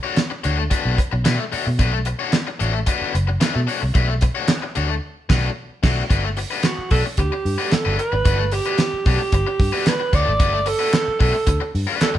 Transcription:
0.03 A3 D4 F#4 C#5
0.16 snare, clap, closed hi-hat
0.30 muted overdriven electric guitar stroke
0.44 D2 A3 D4 F#4 C#5, closed hi-hat
0.58 muted overdriven electric guitar stroke
0.71 A3 D4 F#4 B4, kick, closed hi-hat
0.85 B1
0.98 muted overdriven electric guitar stroke, kick, closed hi-hat
1.11 B1, muted overdriven electric guitar stroke
1.25 B2 A3 D4 F#4 B4, snare, clap, closed hi-hat
1.38 muted overdriven electric guitar stroke
1.52 A3 D4 F#4 C#5, muted fingered electric bass stroke, open hi-hat
1.66 B2, muted overdriven electric guitar stroke
1.79 B1 A3 D4 F#4 B4, kick, closed hi-hat
1.92 muted overdriven electric guitar stroke
2.05 muted overdriven electric guitar stroke, closed hi-hat
2.19 A3 D4 F#4 C#5
2.32 snare, clap, closed hi-hat
2.47 muted overdriven electric guitar stroke
2.60 A1 A3 D4 F#4 C#5, closed hi-hat
2.74 muted overdriven electric guitar stroke
2.86 A3 D4 F#4 B4, kick, closed hi-hat
3.01 muted fingered electric bass stroke
3.14 F#1, muted overdriven electric guitar stroke, closed hi-hat
3.27 muted overdriven electric guitar stroke
3.40 A3 D4 F#4 B4, snare, clap, closed hi-hat
3.54 B2, muted overdriven electric guitar stroke
3.67 A3 D4 F#4 C#5, open hi-hat
3.81 C2, muted overdriven electric guitar stroke
3.94 B1 A3 D4 F#4 B4, kick, closed hi-hat
4.08 muted overdriven electric guitar stroke
4.21 muted overdriven electric guitar stroke, kick, closed hi-hat
4.35 A3 D4 F#4 C#5
4.48 snare, clap, closed hi-hat
4.62 muted overdriven electric guitar stroke
4.75 D2 A3 D4 F#4 C#5, closed hi-hat
4.89 muted overdriven electric guitar stroke
5.29 B1 A3 D4 F#4 B4, kick, snare, crash
5.83 B1 A3 D4 F#4, kick, snare, crash
6.10 G1 A3 D4 F#4 B4, kick, closed hi-hat
6.24 muted overdriven electric guitar stroke
6.37 muted overdriven electric guitar stroke, open hi-hat
6.51 A3 D4 F#4 B4
6.63 F#4, muted overdriven electric guitar stroke, snare, clap, closed hi-hat
6.78 muted fingered electric bass stroke
6.91 B1 A3 D4 F#4 A4 B4, kick, open hi-hat
7.05 muted overdriven electric guitar stroke
7.17 D2 G4, muted overdriven electric guitar stroke, kick, closed hi-hat
7.32 muted overdriven electric guitar stroke
7.45 G2, open hi-hat
7.58 A3 D4 F#4 B4
7.71 A4, muted overdriven electric guitar stroke, muted fingered electric bass stroke, snare, clap, closed hi-hat
7.85 G1 A3 D4 F#4 B4
7.99 B4, muted overdriven electric guitar stroke, closed hi-hat
8.12 G#1, muted overdriven electric guitar stroke
8.25 G1 A3 D4 F#4 B4, kick, closed hi-hat
8.39 muted overdriven electric guitar stroke
8.52 G4, muted overdriven electric guitar stroke, open hi-hat
8.65 A3 D4 F#4 B4, closed hi-hat
8.78 muted overdriven electric guitar stroke, snare, clap, closed hi-hat
8.93 muted fingered electric bass stroke
9.06 B1 A3 D4 F#4 G4 B4, kick, open hi-hat
9.20 muted overdriven electric guitar stroke
9.32 G1, muted overdriven electric guitar stroke, kick, closed hi-hat
9.47 muted overdriven electric guitar stroke
9.60 G2, kick, open hi-hat
9.73 A3 D4 F#4 B4
9.86 B4, snare, clap, closed hi-hat
10.00 muted overdriven electric guitar stroke
10.13 D2 A3 D4 F#4 C#5 D5, kick, closed hi-hat
10.27 G#1, muted overdriven electric guitar stroke
10.40 G1 A3 D4 F#4 B4, kick, closed hi-hat
10.53 muted overdriven electric guitar stroke
10.66 A4, muted overdriven electric guitar stroke, open hi-hat
10.79 A3 D4 F#4 B4
10.93 muted overdriven electric guitar stroke, snare, clap, closed hi-hat
11.08 muted fingered electric bass stroke
11.20 B1 A3 D4 F#4 A4 B4, kick, open hi-hat
11.33 muted overdriven electric guitar stroke
11.47 D2, muted overdriven electric guitar stroke, kick, closed hi-hat
11.60 muted overdriven electric guitar stroke
11.75 G2, open hi-hat
11.87 A3 D4 F#4 B4
12.01 A4, muted fingered electric bass stroke, snare, clap, closed hi-hat
12.14 G1, muted overdriven electric guitar stroke

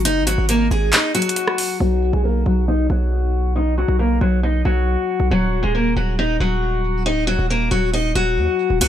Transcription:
0.05 F#1 D#4 D#5, closed hi-hat
0.22 G#1
0.27 F#3 F#4, closed hi-hat
0.38 G#1
0.49 A#3 A#4, closed hi-hat
0.71 G#1 G#3 G#4
0.93 D#4 D#5, clap, closed hi-hat
1.15 F#3 F#4, closed hi-hat
1.22 closed hi-hat
1.29 closed hi-hat
1.36 closed hi-hat
1.48 cross-stick
1.58 open hi-hat
1.80 B1 F#3 F#4
2.13 B1 G#3 G#4
2.24 A#3 A#4
2.46 B1 F#3 F#4
2.68 D#4 D#5
2.90 B1 F#3 F#4
3.56 D#4 D#5
3.78 F#3 F#4
3.88 B1
3.99 A#3 A#4
4.21 B1 F#3 F#4
4.43 D#4 D#5
4.65 B1 F#3 F#4
5.20 B1
5.31 D#1 F#3 F#4
5.63 D#1 G#3 G#4
5.75 A#3 A#4
5.96 D#1 F#3 F#4
6.19 D#4 D#5
6.40 D#1 F#3 F#4
7.06 D1 D#4 D#5
7.22 D#1
7.27 F#3 F#4
7.39 D#1
7.50 A#3 A#4
7.71 D#1 F#3 F#4
7.93 D#4 D#5
8.15 D#1 F#3 F#4
8.37 D#2
8.70 D#1
8.81 B1 F#3 F#4, closed hi-hat, crash

